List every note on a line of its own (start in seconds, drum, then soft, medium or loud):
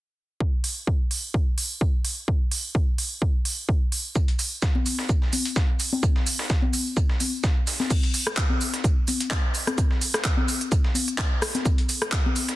0.40 kick loud
0.64 open hi-hat loud
0.87 kick loud
1.11 open hi-hat medium
1.34 kick loud
1.58 open hi-hat loud
1.81 kick loud
2.05 open hi-hat medium
2.28 kick loud
2.51 open hi-hat loud
2.75 kick loud
2.98 open hi-hat medium
3.22 kick loud
3.45 open hi-hat loud
3.69 kick loud
3.92 open hi-hat medium
4.15 kick loud
4.15 tambourine soft
4.15 shaker medium
4.28 closed hi-hat soft
4.39 open hi-hat loud
4.39 tambourine medium
4.39 shaker medium
4.51 tambourine soft
4.62 kick loud
4.62 snare loud
4.62 tambourine soft
4.62 shaker medium
4.75 high conga medium
4.86 open hi-hat medium
4.86 tambourine loud
4.86 shaker medium
4.99 snare soft
4.99 tambourine medium
5.09 kick loud
5.09 shaker medium
5.22 snare soft
5.33 open hi-hat loud
5.33 tambourine medium
5.33 high conga medium
5.33 shaker medium
5.45 closed hi-hat soft
5.45 tambourine medium
5.56 kick loud
5.56 snare loud
5.56 shaker medium
5.80 open hi-hat medium
5.80 tambourine loud
5.80 shaker medium
5.92 tambourine soft
5.92 high conga medium
6.03 kick loud
6.03 tambourine soft
6.03 shaker medium
6.16 snare soft
6.26 open hi-hat loud
6.26 tambourine loud
6.26 shaker medium
6.39 snare medium
6.39 tambourine soft
6.50 kick loud
6.50 snare loud
6.50 shaker medium
6.62 high conga medium
6.73 open hi-hat medium
6.73 tambourine medium
6.73 shaker medium
6.87 tambourine medium
6.97 kick loud
6.97 shaker medium
7.09 snare soft
7.20 open hi-hat loud
7.20 tambourine medium
7.20 high conga medium
7.20 shaker medium
7.33 tambourine medium
7.44 kick loud
7.44 snare loud
7.44 shaker medium
7.67 snare soft
7.67 open hi-hat loud
7.67 tambourine medium
7.67 shaker medium
7.80 snare soft
7.80 tambourine soft
7.80 high conga medium
7.90 kick loud
7.90 closed hi-hat medium
7.90 crash medium
7.90 tambourine soft
7.90 shaker medium
8.03 closed hi-hat soft
8.13 open hi-hat loud
8.13 tambourine medium
8.13 shaker medium
8.27 cross-stick medium
8.27 closed hi-hat medium
8.27 tambourine medium
8.37 kick loud
8.37 snare loud
8.37 clap loud
8.37 closed hi-hat medium
8.37 shaker medium
8.50 high conga medium
8.61 open hi-hat medium
8.61 tambourine medium
8.61 shaker medium
8.74 snare soft
8.74 closed hi-hat medium
8.74 tambourine soft
8.84 kick loud
8.84 closed hi-hat medium
8.84 tambourine soft
8.84 shaker medium
9.07 open hi-hat loud
9.07 tambourine medium
9.07 high conga medium
9.07 shaker medium
9.20 closed hi-hat medium
9.20 closed hi-hat soft
9.20 tambourine soft
9.31 kick loud
9.31 snare loud
9.31 clap loud
9.31 closed hi-hat medium
9.31 shaker medium
9.54 open hi-hat medium
9.54 tambourine medium
9.54 shaker medium
9.67 cross-stick medium
9.67 closed hi-hat medium
9.67 tambourine medium
9.67 high conga medium
9.78 kick loud
9.78 closed hi-hat medium
9.78 tambourine soft
9.78 shaker medium
9.91 snare soft
10.01 open hi-hat loud
10.01 tambourine loud
10.01 shaker medium
10.14 cross-stick medium
10.14 snare medium
10.14 closed hi-hat medium
10.14 tambourine medium
10.24 kick loud
10.24 snare loud
10.24 clap loud
10.24 closed hi-hat medium
10.24 shaker medium
10.37 high conga medium
10.48 open hi-hat medium
10.48 tambourine loud
10.48 shaker medium
10.61 closed hi-hat medium
10.61 tambourine medium
10.72 kick loud
10.72 closed hi-hat medium
10.72 tambourine soft
10.72 shaker medium
10.84 snare medium
10.95 open hi-hat loud
10.95 tambourine medium
10.95 high conga medium
10.95 shaker medium
11.08 closed hi-hat medium
11.08 tambourine medium
11.18 kick loud
11.18 snare loud
11.18 clap loud
11.18 closed hi-hat medium
11.18 shaker medium
11.42 cross-stick medium
11.42 snare soft
11.42 open hi-hat medium
11.42 tambourine medium
11.42 shaker medium
11.55 snare soft
11.55 closed hi-hat medium
11.55 tambourine soft
11.55 high conga loud
11.65 kick loud
11.65 closed hi-hat medium
11.65 tambourine soft
11.65 shaker medium
11.78 closed hi-hat soft
11.89 open hi-hat loud
11.89 tambourine loud
11.89 shaker medium
12.02 cross-stick medium
12.02 closed hi-hat medium
12.02 tambourine soft
12.12 kick loud
12.12 snare loud
12.12 clap loud
12.12 closed hi-hat medium
12.12 shaker medium
12.26 high conga loud
12.35 open hi-hat medium
12.35 tambourine loud
12.35 shaker medium
12.48 snare soft
12.48 closed hi-hat medium
12.48 tambourine medium